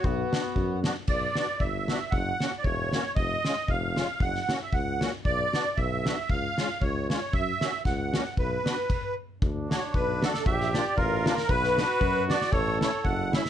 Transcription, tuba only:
X:1
M:2/4
L:1/8
Q:"Swing" 1/4=115
K:Bm
V:1 name="Tuba" clef=bass
B,,, z F,,2 | B,,, z G,,,2 | F,,, z E,,,2 | ^E,,, z E,,,2 |
F,,, z C,,2 | B,,, z B,,,2 | C,, z C,,2 | F,, z C,,2 |
B,,, z3 | [K:D] D,,2 B,,,2 | _B,,,2 A,,,2 | B,,,2 F,,2 |
A,,,2 F,,,2 |]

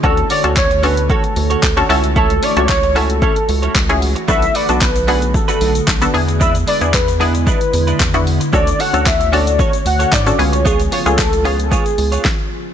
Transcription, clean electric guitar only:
X:1
M:4/4
L:1/16
Q:1/4=113
K:F#m
V:1 name="Clean electric guitar"
[CFAc] z [CFAc] [CFAc] z2 [CFAc] z [CFAc] z2 [CFAc] z [CFAc] [CEAc] z | [CEAc] z [CEAc] [CEAc] z2 [CEAc] z [CEAc] z2 [CEAc] z4 | [A,DFB] z [A,DFB] [A,DFB] z2 [A,DFB] z2 [A,DFB] [A,DFB] z4 z | [G,DEB] z [G,DEB] [G,DEB] z2 [G,DEB] z [G,DEB] z2 [G,DEB] z4 |
[CFAc] z [CFAc] [CFAc] z2 [CFAc] z [CFAc] z2 [CFAc] z4 | [B,^EGc] z [B,EGc] [B,EGc] z2 [B,EGc] z [B,EGc] z2 [B,EGc] z4 |]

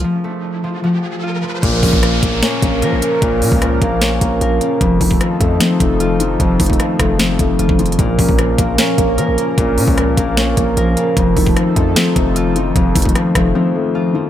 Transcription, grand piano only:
X:1
M:4/4
L:1/8
Q:1/4=151
K:Bbm
V:1 name="Grand piano" clef=bass
z8 | B,, D, F, B, D B, F, D, | B,, D, F, B, D B, F, D, | F,, E, F, =A, C A, F, E, |
F,, E, F, =A, C A, F, E, | B,, D, F, B, D B, F, D, | B,, D, F, B, D B, F, D, | F,, E, F, =A, C A, F, E, |
F,, E, F, =A, C A, F, E, |]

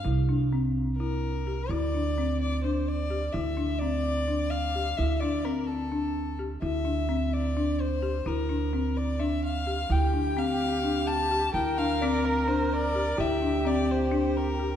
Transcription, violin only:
X:1
M:7/8
L:1/8
Q:1/4=128
K:Dm
V:1 name="Violin"
z4 B3 | d3 d c d2 | e2 d3 f2 | e d B A3 z |
e3 d2 c2 | B3 d e f2 | g2 f3 a2 | g f d B c d2 |
e2 d c2 B2 |]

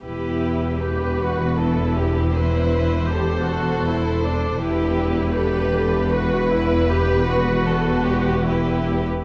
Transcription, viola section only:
X:1
M:3/4
L:1/16
Q:1/4=78
K:Em
V:1 name="Viola section"
E4 G2 F2 E4 | E4 G2 F2 E2 D2 | E4 G4 F2 E2 | G2 F6 E3 z |]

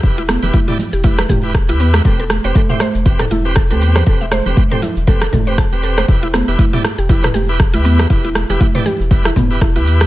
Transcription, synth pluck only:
X:1
M:4/4
L:1/16
Q:"Swing 16ths" 1/4=119
K:Em
V:1 name="Synth pluck"
z E B, z E E z G E B G z2 E B, z | A A z c A e c z2 A E z A A z c | A e c z2 A E z A A A c a z A c | z E B, z E E z G E B G z2 E B, z |
E E z G E B G z2 E B, z E E z G |]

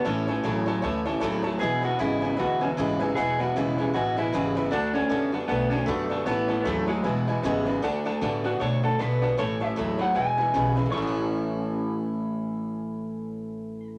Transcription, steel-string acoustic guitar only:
X:1
M:4/4
L:1/8
Q:"Swing" 1/4=154
K:A
V:1 name="Steel-string acoustic guitar"
[A,,E,A,CE] [A,CE] [A,,E,A,CE] [A,CE] [E,A,CE] [A,CE] [A,,E,A,CE] [A,CE] | [E,,B,,E,G,B,E] [E,G,B,E] [E,,B,,E,G,B,E] [E,G,B,E] [E,G,B,E] [E,G,B,E] [E,,B,,E,G,B,E] [E,G,B,E] | [E,,B,,E,G,B,E] [E,G,B,E] [E,,B,,E,G,B,E] [E,G,B,E] [E,G,B,E] [E,G,B,E] [E,,B,,E,G,B,E] [E,G,B,E] | [D,A,DF] [A,DF] [D,A,DF] [A,DF] [D,A,DF] [A,DF] [D,A,DF] [A,DF] |
[A,,E,A,CE] [A,CE] [A,,E,A,CE] [A,CE] [E,G,B,E] [E,G,B,E] [E,,B,,E,G,B,E] [E,G,B,E] | [D,A,DF] [A,DF] [D,A,DF] [A,DF] [D,A,DF] [A,DF] [D,A,DF] [A,DF] | [A,,E,A,CE] [A,CE] [A,,E,A,CE] [A,CE] [E,G,B,E] [E,G,B,E] [E,,B,,E,G,B,E] [E,G,B,E] | [A,,E,A,CE]8- |
[A,,E,A,CE]8 |]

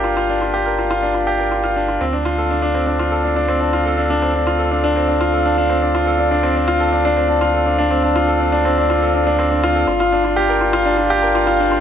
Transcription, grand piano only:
X:1
M:4/4
L:1/16
Q:1/4=122
K:Gdor
V:1 name="Grand piano"
F F D F G B F F D F G B F F D F | C D F A D D C D F A D D C D F A | D D C D F A D D C D F A D D C D | F A D D C D F A D D C D F A D D |
C D F A D D C D F A D D C D F A | F F D F G B F F D F G B F F D F |]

